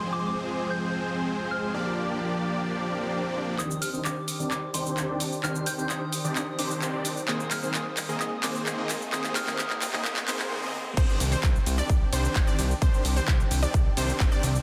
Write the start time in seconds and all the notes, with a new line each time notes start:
Already playing: F3 G#3 C4 G#4 C5 C6
0.13 D6
0.20 C6
0.27 D6
0.70 G6
1.51 F6
1.74 F3 A#3 D4 G4 D5
2.66 swell
3.59 D#3 C4 D4 G4 C5 D#6, clap, riser, cabasa
3.71 cabasa
3.82 F6, open hi-hat, cabasa
3.93 D#3 C4 D4 G4 C5, cabasa
4.05 D6, clap, cabasa
4.28 open hi-hat, cabasa
4.39 D#3 C4 D4 G4 D5, cabasa
4.51 D6, clap, cabasa
4.74 D#3 C4 D4 G4 C5 C6, open hi-hat, cabasa
4.86 cabasa
4.97 clap, cabasa
5.09 D#3 C4 D4 G4 D5
5.20 open hi-hat, cabasa
5.32 cabasa
5.43 D#3 C4 D4 G4 C5 F6, clap, cabasa
5.55 cabasa
5.66 G6, open hi-hat, cabasa
5.78 D#3 C4 D4 G4 C5, cabasa
5.89 D#6, clap, cabasa
6.13 open hi-hat, cabasa
6.24 D#3 C4 D4 G4 D5, cabasa
6.36 D#6, clap, cabasa
6.59 D#3 C4 D4 G4 C5 D6, open hi-hat, cabasa
6.71 cabasa
6.82 clap, cabasa
6.93 D#3 C4 D4 G4 D5
7.05 open hi-hat, cabasa
7.17 cabasa
7.28 D#3 A#3 C4 G#4 C5 D#6, clap, cabasa
7.40 cabasa
7.51 F6, clap, open hi-hat, cabasa
7.63 D#3 A#3 C4 G#4 C5, cabasa
7.74 D#6, clap, cabasa
7.97 clap, open hi-hat, cabasa
8.09 D#3 A#3 C4 G#4 D#5, cabasa
8.20 D#6, clap, cabasa
8.43 D#3 A#3 C4 G#4 C5 D6, clap, open hi-hat, cabasa
8.55 cabasa
8.66 clap, cabasa
8.78 D#3 A#3 C4 G#4 D#5
8.89 clap, open hi-hat, cabasa
9.02 cabasa
9.12 D#3 A#3 C4 G4 G#4 C5 D#6, clap, noise sweep, cabasa
9.24 clap, cabasa
9.36 F6, clap, open hi-hat, cabasa
9.47 D#3 A#3 C4 G#4 C5, clap, cabasa
9.59 D#6, clap, cabasa
9.70 clap
9.82 clap, open hi-hat, cabasa
9.93 D#3 A#3 C4 G#4 D#5, clap, cabasa
10.05 D#6, clap, cabasa
10.16 clap, cabasa
10.28 D#3 A#3 C4 G#4 C5 C6, clap, open hi-hat, cabasa
10.39 clap, cabasa
10.62 D#3 A#3 C4 G#4 D#5
10.97 C2 D#3 C4 D4 G4 C5, kick, crash, cabasa
11.09 cabasa
11.20 C2, open hi-hat, ride, cabasa
11.32 D#3 C4 D4 G4 C5, cabasa
11.43 C2, kick, clap, cabasa
11.56 cabasa
11.66 C2, open hi-hat, ride, cabasa
11.78 D#3 C4 D4 G4 D5, cabasa
11.90 C2, kick, cabasa
12.12 C2 D#3 C4 D4 G4 C5, open hi-hat, ride, cabasa
12.25 cabasa
12.36 G1, kick, clap, cabasa
12.47 D#3 C4 D4 G4 D5, cabasa
12.59 C2, open hi-hat, ride, cabasa
12.71 cabasa
12.82 C2 D#3 C4 D4 G4 C5, kick, cabasa
12.94 cabasa
13.05 C2, open hi-hat, ride, cabasa
13.16 D#3 C4 D4 G4 C5, cabasa
13.28 C2, kick, clap, cabasa
13.40 cabasa
13.51 C2, open hi-hat, ride, cabasa
13.62 D#3 C4 D4 G4 D5, cabasa
13.74 C2, kick, cabasa
13.97 C2 D#3 C4 D4 G4 C5, open hi-hat, ride, cabasa
14.09 cabasa
14.20 G1, kick, clap, cabasa
14.32 D#3 C4 D4 G4 D5, cabasa
14.43 C2, open hi-hat, ride, cabasa
14.55 cabasa